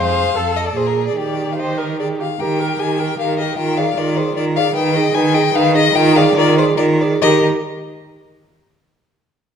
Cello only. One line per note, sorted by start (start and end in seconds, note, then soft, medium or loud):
0.00 0.33 F2 medium
0.36 0.75 F2 medium
0.75 1.15 A#2 medium
1.16 2.17 D#3 medium
2.40 2.75 D#3 medium
2.79 3.14 D#3 medium
3.19 3.53 D#3 medium
3.58 3.93 D#3 medium
3.97 4.32 D#3 medium
4.36 4.71 D#3 medium
4.75 5.10 D#3 medium
5.14 5.50 D#3 loud
5.54 5.90 D#3 loud
5.94 6.31 D#3 loud
6.35 6.73 D#3 loud
6.78 7.17 D#3 medium
7.22 7.45 D#3 loud